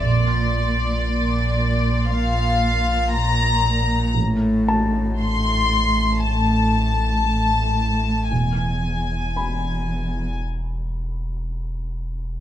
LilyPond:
<<
  \new Staff \with { instrumentName = "Violin section" } { \time 4/4 \key a \minor \tempo 4 = 58 <c''' a'''>2.~ <c''' a'''>8 r8 | r1 | r1 | }
  \new Staff \with { instrumentName = "Grand piano" } { \time 4/4 \key a \minor gis'''8 r2. r8 | r8 a''2. r8 | r4 b''4 r2 | }
  \new Staff \with { instrumentName = "Violin section" } { \time 4/4 \key a \minor d''2 f''4 bes''4 | r4 c'''4 a''2 | gis''2 r2 | }
  \new Staff \with { instrumentName = "Cello section" } { \clef bass \time 4/4 \key a \minor bes,4 bes,4 bes,4 bes,4 | a,4 a,4 a,4 a,4 | e,4 e,4 r2 | }
  \new Staff \with { instrumentName = "Double bass section" } { \clef bass \time 4/4 \key a \minor bes,,4 r2. | a,,4 r2. | e,,4 r2. | }
  \new Staff \with { instrumentName = "Sub bass" } { \clef bass \time 4/4 \key a \minor bes,,1 | a,,1 | e,,1 | }
>>